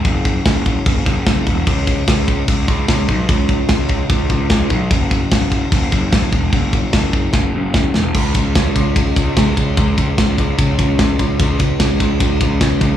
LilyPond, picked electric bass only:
\new Staff \with { instrumentName = "Picked electric bass" } { \clef bass \time 4/4 \key cis \minor \tempo 4 = 148 fis,,4 fis,,4 fis,,8 fis,,8 fis,,8 e,,8 | cis,4 cis,4 cis,8 cis,8 cis,8 b,,8 | cis,4 cis,4 cis,8 cis,8 cis,8 b,,8 | fis,,4 fis,,4 fis,,8 fis,,8 fis,,8 e,,8 |
fis,,4 fis,,4 fis,,8 fis,,8 fis,,8 e,,8 | cis,8 cis,8 cis,8 cis,8 cis,8 cis,8 cis,8 cis,8 | cis,8 cis,8 cis,8 cis,8 cis,8 cis,8 cis,8 cis,8 | cis,8 cis,8 cis,8 cis,8 cis,8 cis,8 cis,8 cis,8 | }